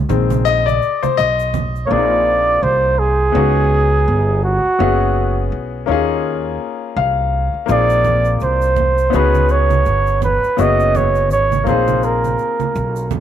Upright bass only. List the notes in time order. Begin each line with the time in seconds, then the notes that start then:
0.10 A#1
1.04 muted upright bass stroke
1.19 B1
1.91 A#1
2.63 C2
3.35 C#2
4.08 G1
4.65 muted upright bass stroke
4.80 F#1
5.52 B1
5.88 D#2
6.96 C2
7.54 muted upright bass stroke
7.69 A#1
8.42 C2
9.14 C#2
9.86 G1
10.44 muted upright bass stroke
10.59 F#1
11.31 G#1
11.67 A#1
12.76 B1